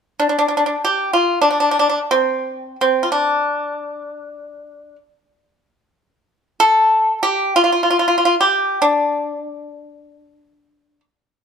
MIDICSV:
0, 0, Header, 1, 2, 480
1, 0, Start_track
1, 0, Tempo, 500000
1, 10985, End_track
2, 0, Start_track
2, 0, Title_t, "Pipa"
2, 0, Program_c, 0, 105
2, 187, Note_on_c, 0, 62, 47
2, 262, Note_off_c, 0, 62, 0
2, 281, Note_on_c, 0, 62, 39
2, 355, Note_off_c, 0, 62, 0
2, 370, Note_on_c, 0, 62, 42
2, 444, Note_off_c, 0, 62, 0
2, 464, Note_on_c, 0, 62, 36
2, 537, Note_off_c, 0, 62, 0
2, 547, Note_on_c, 0, 62, 41
2, 624, Note_off_c, 0, 62, 0
2, 634, Note_on_c, 0, 62, 37
2, 713, Note_off_c, 0, 62, 0
2, 811, Note_on_c, 0, 67, 54
2, 1071, Note_off_c, 0, 67, 0
2, 1088, Note_on_c, 0, 65, 51
2, 1338, Note_off_c, 0, 65, 0
2, 1358, Note_on_c, 0, 62, 53
2, 1434, Note_off_c, 0, 62, 0
2, 1445, Note_on_c, 0, 62, 39
2, 1526, Note_off_c, 0, 62, 0
2, 1537, Note_on_c, 0, 62, 44
2, 1623, Note_off_c, 0, 62, 0
2, 1644, Note_on_c, 0, 62, 42
2, 1710, Note_off_c, 0, 62, 0
2, 1721, Note_on_c, 0, 62, 42
2, 1806, Note_off_c, 0, 62, 0
2, 1818, Note_on_c, 0, 62, 38
2, 1900, Note_off_c, 0, 62, 0
2, 2025, Note_on_c, 0, 60, 56
2, 2645, Note_off_c, 0, 60, 0
2, 2700, Note_on_c, 0, 60, 51
2, 2902, Note_off_c, 0, 60, 0
2, 2908, Note_on_c, 0, 65, 36
2, 2988, Note_off_c, 0, 65, 0
2, 2993, Note_on_c, 0, 62, 49
2, 4756, Note_off_c, 0, 62, 0
2, 6336, Note_on_c, 0, 69, 74
2, 6891, Note_off_c, 0, 69, 0
2, 6938, Note_on_c, 0, 67, 62
2, 7230, Note_off_c, 0, 67, 0
2, 7256, Note_on_c, 0, 65, 66
2, 7321, Note_off_c, 0, 65, 0
2, 7332, Note_on_c, 0, 65, 42
2, 7404, Note_off_c, 0, 65, 0
2, 7415, Note_on_c, 0, 65, 44
2, 7497, Note_off_c, 0, 65, 0
2, 7516, Note_on_c, 0, 65, 36
2, 7577, Note_off_c, 0, 65, 0
2, 7588, Note_on_c, 0, 65, 44
2, 7661, Note_off_c, 0, 65, 0
2, 7672, Note_on_c, 0, 65, 37
2, 7742, Note_off_c, 0, 65, 0
2, 7754, Note_on_c, 0, 65, 46
2, 7837, Note_off_c, 0, 65, 0
2, 7849, Note_on_c, 0, 65, 42
2, 7911, Note_off_c, 0, 65, 0
2, 7922, Note_on_c, 0, 65, 50
2, 8007, Note_off_c, 0, 65, 0
2, 8069, Note_on_c, 0, 67, 53
2, 8433, Note_off_c, 0, 67, 0
2, 8464, Note_on_c, 0, 62, 49
2, 10560, Note_off_c, 0, 62, 0
2, 10985, End_track
0, 0, End_of_file